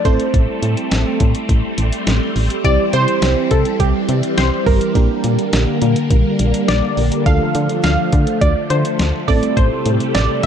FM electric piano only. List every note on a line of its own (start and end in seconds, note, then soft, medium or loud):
0.05 2.32 A3 medium
0.05 2.32 C4 medium
0.05 2.32 E4 medium
0.05 2.32 A4 medium
2.65 4.34 G3 medium
2.65 4.34 C4 medium
2.65 4.34 E4 medium
2.65 4.34 G4 medium
4.38 4.95 G3 soft
4.38 4.95 C4 soft
4.38 4.95 E4 soft
4.38 4.94 G4 medium
4.95 7.22 A#3 medium
4.95 7.22 D4 medium
4.95 7.22 G4 medium
4.95 7.22 A#4 medium
7.26 9.24 A3 medium
7.26 9.24 D4 medium
7.26 9.24 F4 medium
7.26 9.24 A4 medium
9.28 10.46 A3 medium
9.28 10.46 C4 medium
9.28 10.46 E4 medium
9.28 10.46 A4 medium